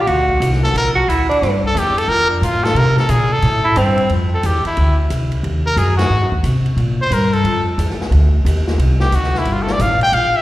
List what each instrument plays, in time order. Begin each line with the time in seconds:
0.01 tenor saxophone G4
0.07 upright bass D2, tenor saxophone F#4, ride
0.29 kick
0.40 upright bass C2, hi-hat pedal, ride
0.53 snare
0.64 trumpet A4, snare
0.74 upright bass A#1, trumpet A#4, ride
0.95 tenor saxophone F#4, kick
1.08 upright bass D2, tenor saxophone E4, hi-hat pedal, ride
1.30 tenor saxophone D4, ride
1.42 upright bass G2, snare, ride
1.64 trumpet A4, kick
1.75 upright bass E2, trumpet G4, hi-hat pedal, ride
1.98 trumpet A4, ride
2.08 upright bass F2, trumpet A#4
2.30 trumpet D4
2.42 upright bass A2, trumpet F4, hi-hat pedal, ride
2.64 trumpet A4, snare, ride
2.75 upright bass C3, trumpet A#4, ride
2.97 trumpet A4, snare
3.09 upright bass A#2, trumpet G#4, hi-hat pedal, ride
3.33 trumpet A4
3.42 upright bass A2, ride
3.65 tenor saxophone E4
3.76 upright bass G2, tenor saxophone C4, hi-hat pedal, ride
3.98 ride
4.09 upright bass F2, ride
4.34 trumpet A4
4.43 upright bass E2, trumpet G4, hi-hat pedal, ride
4.65 trumpet E4, muted upright bass stroke, ride
4.77 upright bass D2, ride
5.10 upright bass C2, hi-hat pedal, ride
5.32 ride
5.43 upright bass D#2, ride
5.66 trumpet A#4
5.76 upright bass F#2, trumpet G#4, hi-hat pedal, ride
5.97 trumpet F#4, snare, ride
6.10 upright bass G#2
6.21 upright bass F#2
6.32 upright bass D#2, kick
6.43 upright bass C3, hi-hat pedal, ride
6.66 ride
6.76 upright bass A#2, ride
7.01 trumpet C5
7.10 upright bass G2, trumpet A#4, hi-hat pedal, ride
7.33 trumpet A4, ride
7.44 upright bass F2, ride
7.78 upright bass E2, hi-hat pedal, ride
7.90 snare
8.01 snare
8.11 upright bass D2, ride
8.45 upright bass D#2, hi-hat pedal, ride
8.67 snare
8.78 upright bass C2, ride
9.00 trumpet G4, snare
9.12 upright bass D2, trumpet F#4, hi-hat pedal, ride
9.24 snare
9.35 trumpet E4, snare
9.45 upright bass G1, ride
9.53 trumpet F4
9.62 trumpet A4
9.67 snare
9.72 trumpet D5
9.79 upright bass A1, trumpet F5, hi-hat pedal, ride
10.01 trumpet G5, muted upright bass stroke, ride
10.12 upright bass A#1, trumpet F5, ride
10.36 trumpet E5